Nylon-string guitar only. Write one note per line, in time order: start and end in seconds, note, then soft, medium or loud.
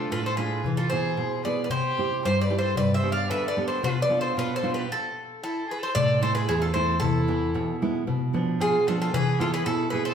0.00 0.28 A3 soft
0.00 0.28 D4 soft
0.00 0.28 F4 medium
0.12 0.63 A2 medium
0.38 0.59 A3 soft
0.38 0.59 D4 soft
0.38 0.60 F4 medium
0.66 1.17 E3 medium
0.92 1.16 B2 soft
0.92 1.34 E4 soft
0.92 1.35 G#4 medium
1.17 1.69 B2 medium
1.45 1.66 B3 soft
1.45 1.66 E4 soft
1.45 1.66 G#4 medium
1.72 2.23 C3 medium
1.98 2.40 C4 medium
1.98 2.41 E4 soft
1.98 2.41 G4 medium
2.25 2.76 G2 medium
2.50 2.71 C4 soft
2.50 2.72 E4 soft
2.50 2.72 G4 medium
2.78 3.29 G2 medium
3.03 3.46 B3 soft
3.03 3.46 D4 soft
3.03 3.46 G4 medium
3.30 3.82 D3 medium
3.57 3.78 B3 medium
3.57 3.79 D4 soft
3.57 3.79 G4 medium
3.83 4.35 B2 medium
4.09 4.52 B3 soft
4.09 4.52 D4 soft
4.09 4.53 F4 medium
4.37 4.88 B2 medium
4.63 4.84 B3 soft
4.63 4.84 D4 soft
4.63 4.85 F4 medium
5.96 6.47 A2 medium
6.21 6.64 A3 medium
6.21 6.64 C4 medium
6.21 6.65 E4 medium
6.48 7.00 E2 medium
6.75 6.96 A3 medium
6.75 6.96 C4 soft
6.75 6.97 E4 medium
7.02 7.53 E2 medium
7.28 7.70 E3 medium
7.28 7.70 B3 soft
7.28 7.71 E4 medium
7.54 8.06 B2 medium
7.82 8.03 G#3 medium
7.82 8.03 B3 soft
7.82 8.03 E4 medium
8.07 8.59 B2 medium
8.33 8.76 F3 medium
8.33 8.76 B3 soft
8.33 8.76 D4 medium
8.61 9.12 B2 medium
8.88 9.09 F3 medium
8.88 9.09 B3 soft
8.88 9.09 D4 medium
9.14 9.65 E3 medium
9.39 9.82 B3 medium
9.39 9.82 E4 soft
9.39 9.82 G#4 medium
9.66 10.14 B2 medium
9.93 10.14 B3 soft
9.93 10.14 E4 medium
9.93 10.14 G#4 medium